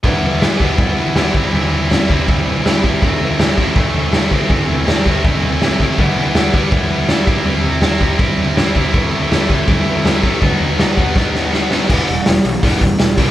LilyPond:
<<
  \new Staff \with { instrumentName = "Distorted electric guitar" } { \clef bass \time 4/4 \key e \minor \tempo 4 = 162 <e g b e'>4 <e g b e'>8 <e g b e'>8 <e g b e'>4 <e g b e'>8 <c e g c' e'>8 | <c e g c' e'>4 <c e g c' e'>8 <c e g c' e'>8 <c e g c' e'>4 <c e g c' e'>8 <c e g c' e'>8 | <c e a c' e'>4 <c e a c' e'>8 <c e a c' e'>8 <c e a c' e'>4 <c e a c' e'>8 <c e a c' e'>8 | <c e a c' e'>4 <c e a c' e'>8 <c e a c' e'>8 <c e a c' e'>4 <c e a c' e'>8 <c e a c' e'>8 |
<e g b e'>4 <e g b e'>8 <e g b e'>8 <e g b e'>4 <e g b e'>8 <c g c' e'>8 | <c g c' e'>4 <c g c' e'>8 <c g c' e'>8 <c g c' e'>4 <c g c' e'>8 <c g c' e'>8 | <c e a e'>4 <c e a e'>8 <c e a e'>8 <c e a e'>4 <c e a e'>8 <c e a e'>8 | <b, fis b dis'>4 <b, fis b dis'>8 <b, fis b dis'>8 <b, fis b dis'>4 <b, fis b dis'>8 <b, fis b dis'>8 |
<e g b>8 <e g>8 <e g>8 <e g>8 <e g b>8 <e g>8 <e g>8 <c e g>8 | }
  \new Staff \with { instrumentName = "Picked electric bass" } { \clef bass \time 4/4 \key e \minor r1 | r1 | r1 | r1 |
r1 | r1 | r1 | r1 |
e,,8 e,,8 e,,8 b,,8 e,,8 e,,8 e,,8 c,8 | }
  \new DrumStaff \with { instrumentName = "Drums" } \drummode { \time 4/4 <bd tomfh>8 tomfh8 <sn tomfh>8 <bd tomfh>8 <bd tomfh>8 tomfh8 <sn tomfh>8 <bd tomfh>8 | tomfh8 tomfh8 <sn tomfh>8 <bd tomfh>8 <bd tomfh>8 tomfh8 <sn tomfh>8 <bd tomfh>8 | <bd tomfh>8 tomfh8 <sn tomfh>8 <bd tomfh>8 <bd tomfh>8 tomfh8 <sn tomfh>8 <bd tomfh>8 | <bd tomfh>8 tomfh8 <sn tomfh>8 <bd tomfh>8 <bd tomfh>8 tomfh8 <sn tomfh>8 <bd tomfh>8 |
<bd tomfh>8 tomfh8 <sn tomfh>8 <bd tomfh>8 <bd tomfh>8 tomfh8 <sn tomfh>8 <bd tomfh>8 | tomfh8 tomfh8 <sn tomfh>8 <bd tomfh>8 <bd tomfh>8 tomfh8 <sn tomfh>8 <bd tomfh>8 | <bd tomfh>8 tomfh8 <sn tomfh>8 <bd tomfh>8 <bd tomfh>8 tomfh8 <sn tomfh>8 <bd tomfh>8 | <bd tomfh>8 tomfh8 <sn tomfh>8 <bd tomfh>8 <bd sn>8 sn8 sn8 sn8 |
<cymc bd>8 hho8 <hho sn>8 hho8 <hho bd>8 <hho bd>8 <hho sn>8 <hho bd>8 | }
>>